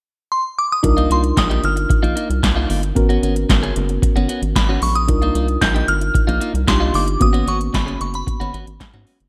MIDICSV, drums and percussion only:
0, 0, Header, 1, 2, 480
1, 0, Start_track
1, 0, Tempo, 530973
1, 758, Time_signature, 4, 2, 24, 8
1, 8397, End_track
2, 0, Start_track
2, 0, Title_t, "Drums"
2, 758, Note_on_c, 9, 36, 120
2, 758, Note_on_c, 9, 42, 85
2, 849, Note_off_c, 9, 36, 0
2, 849, Note_off_c, 9, 42, 0
2, 883, Note_on_c, 9, 42, 35
2, 974, Note_off_c, 9, 42, 0
2, 1002, Note_on_c, 9, 42, 91
2, 1092, Note_off_c, 9, 42, 0
2, 1118, Note_on_c, 9, 42, 52
2, 1208, Note_off_c, 9, 42, 0
2, 1239, Note_on_c, 9, 36, 111
2, 1240, Note_on_c, 9, 42, 73
2, 1243, Note_on_c, 9, 38, 98
2, 1249, Note_on_c, 9, 39, 82
2, 1330, Note_off_c, 9, 36, 0
2, 1331, Note_off_c, 9, 42, 0
2, 1334, Note_off_c, 9, 38, 0
2, 1339, Note_off_c, 9, 39, 0
2, 1365, Note_on_c, 9, 42, 36
2, 1455, Note_off_c, 9, 42, 0
2, 1479, Note_on_c, 9, 42, 78
2, 1569, Note_off_c, 9, 42, 0
2, 1599, Note_on_c, 9, 42, 57
2, 1690, Note_off_c, 9, 42, 0
2, 1717, Note_on_c, 9, 36, 111
2, 1722, Note_on_c, 9, 42, 90
2, 1807, Note_off_c, 9, 36, 0
2, 1813, Note_off_c, 9, 42, 0
2, 1845, Note_on_c, 9, 42, 37
2, 1936, Note_off_c, 9, 42, 0
2, 1960, Note_on_c, 9, 42, 79
2, 2050, Note_off_c, 9, 42, 0
2, 2084, Note_on_c, 9, 42, 61
2, 2174, Note_off_c, 9, 42, 0
2, 2199, Note_on_c, 9, 36, 103
2, 2202, Note_on_c, 9, 42, 86
2, 2203, Note_on_c, 9, 38, 105
2, 2209, Note_on_c, 9, 39, 79
2, 2290, Note_off_c, 9, 36, 0
2, 2293, Note_off_c, 9, 42, 0
2, 2294, Note_off_c, 9, 38, 0
2, 2300, Note_off_c, 9, 39, 0
2, 2440, Note_on_c, 9, 46, 73
2, 2531, Note_off_c, 9, 46, 0
2, 2559, Note_on_c, 9, 42, 61
2, 2650, Note_off_c, 9, 42, 0
2, 2679, Note_on_c, 9, 36, 122
2, 2679, Note_on_c, 9, 42, 89
2, 2769, Note_off_c, 9, 36, 0
2, 2770, Note_off_c, 9, 42, 0
2, 2803, Note_on_c, 9, 42, 35
2, 2893, Note_off_c, 9, 42, 0
2, 2923, Note_on_c, 9, 42, 85
2, 3013, Note_off_c, 9, 42, 0
2, 3039, Note_on_c, 9, 42, 55
2, 3130, Note_off_c, 9, 42, 0
2, 3160, Note_on_c, 9, 36, 112
2, 3161, Note_on_c, 9, 42, 81
2, 3164, Note_on_c, 9, 38, 102
2, 3169, Note_on_c, 9, 39, 72
2, 3250, Note_off_c, 9, 36, 0
2, 3251, Note_off_c, 9, 42, 0
2, 3254, Note_off_c, 9, 38, 0
2, 3260, Note_off_c, 9, 39, 0
2, 3286, Note_on_c, 9, 42, 35
2, 3376, Note_off_c, 9, 42, 0
2, 3400, Note_on_c, 9, 42, 84
2, 3490, Note_off_c, 9, 42, 0
2, 3517, Note_on_c, 9, 42, 55
2, 3608, Note_off_c, 9, 42, 0
2, 3638, Note_on_c, 9, 36, 103
2, 3644, Note_on_c, 9, 42, 100
2, 3728, Note_off_c, 9, 36, 0
2, 3735, Note_off_c, 9, 42, 0
2, 3765, Note_on_c, 9, 42, 36
2, 3856, Note_off_c, 9, 42, 0
2, 3879, Note_on_c, 9, 42, 73
2, 3970, Note_off_c, 9, 42, 0
2, 4001, Note_on_c, 9, 42, 58
2, 4092, Note_off_c, 9, 42, 0
2, 4119, Note_on_c, 9, 36, 113
2, 4123, Note_on_c, 9, 42, 77
2, 4124, Note_on_c, 9, 38, 111
2, 4130, Note_on_c, 9, 39, 81
2, 4210, Note_off_c, 9, 36, 0
2, 4213, Note_off_c, 9, 42, 0
2, 4214, Note_off_c, 9, 38, 0
2, 4220, Note_off_c, 9, 39, 0
2, 4356, Note_on_c, 9, 46, 71
2, 4446, Note_off_c, 9, 46, 0
2, 4479, Note_on_c, 9, 42, 62
2, 4569, Note_off_c, 9, 42, 0
2, 4597, Note_on_c, 9, 42, 96
2, 4598, Note_on_c, 9, 36, 125
2, 4687, Note_off_c, 9, 42, 0
2, 4688, Note_off_c, 9, 36, 0
2, 4721, Note_on_c, 9, 42, 35
2, 4811, Note_off_c, 9, 42, 0
2, 4839, Note_on_c, 9, 42, 87
2, 4929, Note_off_c, 9, 42, 0
2, 4957, Note_on_c, 9, 42, 51
2, 5048, Note_off_c, 9, 42, 0
2, 5077, Note_on_c, 9, 42, 73
2, 5078, Note_on_c, 9, 36, 99
2, 5080, Note_on_c, 9, 38, 95
2, 5086, Note_on_c, 9, 39, 81
2, 5168, Note_off_c, 9, 42, 0
2, 5169, Note_off_c, 9, 36, 0
2, 5171, Note_off_c, 9, 38, 0
2, 5176, Note_off_c, 9, 39, 0
2, 5205, Note_on_c, 9, 42, 36
2, 5296, Note_off_c, 9, 42, 0
2, 5318, Note_on_c, 9, 42, 77
2, 5408, Note_off_c, 9, 42, 0
2, 5437, Note_on_c, 9, 42, 60
2, 5527, Note_off_c, 9, 42, 0
2, 5556, Note_on_c, 9, 36, 110
2, 5562, Note_on_c, 9, 42, 91
2, 5647, Note_off_c, 9, 36, 0
2, 5653, Note_off_c, 9, 42, 0
2, 5683, Note_on_c, 9, 42, 39
2, 5774, Note_off_c, 9, 42, 0
2, 5798, Note_on_c, 9, 42, 75
2, 5889, Note_off_c, 9, 42, 0
2, 5921, Note_on_c, 9, 42, 56
2, 6012, Note_off_c, 9, 42, 0
2, 6037, Note_on_c, 9, 36, 110
2, 6038, Note_on_c, 9, 42, 84
2, 6039, Note_on_c, 9, 38, 104
2, 6045, Note_on_c, 9, 39, 85
2, 6127, Note_off_c, 9, 36, 0
2, 6129, Note_off_c, 9, 42, 0
2, 6130, Note_off_c, 9, 38, 0
2, 6135, Note_off_c, 9, 39, 0
2, 6275, Note_on_c, 9, 46, 69
2, 6365, Note_off_c, 9, 46, 0
2, 6397, Note_on_c, 9, 42, 58
2, 6488, Note_off_c, 9, 42, 0
2, 6516, Note_on_c, 9, 36, 114
2, 6516, Note_on_c, 9, 42, 97
2, 6606, Note_off_c, 9, 42, 0
2, 6607, Note_off_c, 9, 36, 0
2, 6637, Note_on_c, 9, 42, 36
2, 6727, Note_off_c, 9, 42, 0
2, 6758, Note_on_c, 9, 42, 90
2, 6849, Note_off_c, 9, 42, 0
2, 6879, Note_on_c, 9, 42, 56
2, 6969, Note_off_c, 9, 42, 0
2, 6999, Note_on_c, 9, 36, 103
2, 7000, Note_on_c, 9, 42, 74
2, 7003, Note_on_c, 9, 38, 99
2, 7009, Note_on_c, 9, 39, 82
2, 7089, Note_off_c, 9, 36, 0
2, 7091, Note_off_c, 9, 42, 0
2, 7093, Note_off_c, 9, 38, 0
2, 7099, Note_off_c, 9, 39, 0
2, 7124, Note_on_c, 9, 42, 35
2, 7214, Note_off_c, 9, 42, 0
2, 7240, Note_on_c, 9, 42, 82
2, 7330, Note_off_c, 9, 42, 0
2, 7357, Note_on_c, 9, 42, 57
2, 7447, Note_off_c, 9, 42, 0
2, 7477, Note_on_c, 9, 36, 102
2, 7484, Note_on_c, 9, 42, 91
2, 7567, Note_off_c, 9, 36, 0
2, 7574, Note_off_c, 9, 42, 0
2, 7605, Note_on_c, 9, 42, 37
2, 7695, Note_off_c, 9, 42, 0
2, 7722, Note_on_c, 9, 42, 79
2, 7812, Note_off_c, 9, 42, 0
2, 7841, Note_on_c, 9, 42, 57
2, 7931, Note_off_c, 9, 42, 0
2, 7959, Note_on_c, 9, 36, 115
2, 7961, Note_on_c, 9, 42, 81
2, 7962, Note_on_c, 9, 38, 111
2, 7968, Note_on_c, 9, 39, 80
2, 8049, Note_off_c, 9, 36, 0
2, 8051, Note_off_c, 9, 42, 0
2, 8052, Note_off_c, 9, 38, 0
2, 8058, Note_off_c, 9, 39, 0
2, 8078, Note_on_c, 9, 42, 34
2, 8168, Note_off_c, 9, 42, 0
2, 8197, Note_on_c, 9, 46, 67
2, 8288, Note_off_c, 9, 46, 0
2, 8320, Note_on_c, 9, 42, 59
2, 8397, Note_off_c, 9, 42, 0
2, 8397, End_track
0, 0, End_of_file